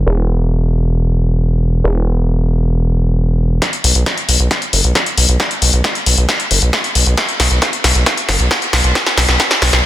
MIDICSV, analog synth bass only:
0, 0, Header, 1, 2, 480
1, 0, Start_track
1, 0, Tempo, 444444
1, 70, Time_signature, 4, 2, 24, 8
1, 10646, End_track
2, 0, Start_track
2, 0, Title_t, "Analog synth bass"
2, 0, Program_c, 0, 38
2, 70, Note_on_c, 0, 28, 85
2, 1966, Note_off_c, 0, 28, 0
2, 1989, Note_on_c, 0, 28, 85
2, 3885, Note_off_c, 0, 28, 0
2, 4149, Note_on_c, 0, 35, 87
2, 4235, Note_off_c, 0, 35, 0
2, 4269, Note_on_c, 0, 35, 76
2, 4355, Note_off_c, 0, 35, 0
2, 4629, Note_on_c, 0, 35, 85
2, 4715, Note_off_c, 0, 35, 0
2, 4749, Note_on_c, 0, 35, 80
2, 4835, Note_off_c, 0, 35, 0
2, 5109, Note_on_c, 0, 30, 90
2, 5195, Note_off_c, 0, 30, 0
2, 5229, Note_on_c, 0, 35, 82
2, 5315, Note_off_c, 0, 35, 0
2, 5590, Note_on_c, 0, 35, 91
2, 5676, Note_off_c, 0, 35, 0
2, 5710, Note_on_c, 0, 35, 79
2, 5796, Note_off_c, 0, 35, 0
2, 6069, Note_on_c, 0, 35, 95
2, 6155, Note_off_c, 0, 35, 0
2, 6190, Note_on_c, 0, 35, 81
2, 6276, Note_off_c, 0, 35, 0
2, 6549, Note_on_c, 0, 35, 88
2, 6635, Note_off_c, 0, 35, 0
2, 6670, Note_on_c, 0, 35, 82
2, 6756, Note_off_c, 0, 35, 0
2, 7030, Note_on_c, 0, 30, 89
2, 7116, Note_off_c, 0, 30, 0
2, 7150, Note_on_c, 0, 35, 80
2, 7235, Note_off_c, 0, 35, 0
2, 7510, Note_on_c, 0, 35, 91
2, 7595, Note_off_c, 0, 35, 0
2, 7630, Note_on_c, 0, 35, 82
2, 7716, Note_off_c, 0, 35, 0
2, 7990, Note_on_c, 0, 35, 90
2, 8076, Note_off_c, 0, 35, 0
2, 8110, Note_on_c, 0, 35, 81
2, 8196, Note_off_c, 0, 35, 0
2, 8469, Note_on_c, 0, 35, 91
2, 8555, Note_off_c, 0, 35, 0
2, 8589, Note_on_c, 0, 35, 82
2, 8675, Note_off_c, 0, 35, 0
2, 8950, Note_on_c, 0, 30, 93
2, 9035, Note_off_c, 0, 30, 0
2, 9069, Note_on_c, 0, 35, 81
2, 9155, Note_off_c, 0, 35, 0
2, 9429, Note_on_c, 0, 35, 89
2, 9515, Note_off_c, 0, 35, 0
2, 9549, Note_on_c, 0, 35, 83
2, 9635, Note_off_c, 0, 35, 0
2, 9909, Note_on_c, 0, 35, 96
2, 9995, Note_off_c, 0, 35, 0
2, 10029, Note_on_c, 0, 35, 84
2, 10115, Note_off_c, 0, 35, 0
2, 10389, Note_on_c, 0, 35, 90
2, 10475, Note_off_c, 0, 35, 0
2, 10509, Note_on_c, 0, 35, 83
2, 10595, Note_off_c, 0, 35, 0
2, 10646, End_track
0, 0, End_of_file